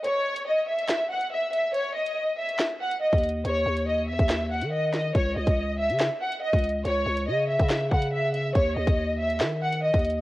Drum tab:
HH |x-----x-------x-x-----x-----x---|x-----x-------x-------x---xxxx--|x-----x-------x-x-----x-----x---|x-----x-------x-------x---xxxx--|
CP |----------------x---------------|----------------x---------------|----------------x---------------|----------------x---------------|
SD |----------------o---------------|----------------o---------------|----------------o-----------o---|----------------o---------------|
BD |--------------------------------|--------------------------o-----|--------------o-----------------|o-----o-------------------o-----|

HH |x-----x-------x-x-----x-----x---|x-----x-------x-------x---xxxx--|
CP |----------------x---------------|----------------x---------------|
SD |----------------o---------------|----------------o---------------|
BD |--------------o-----o-----------|o-----o-------------------o-----|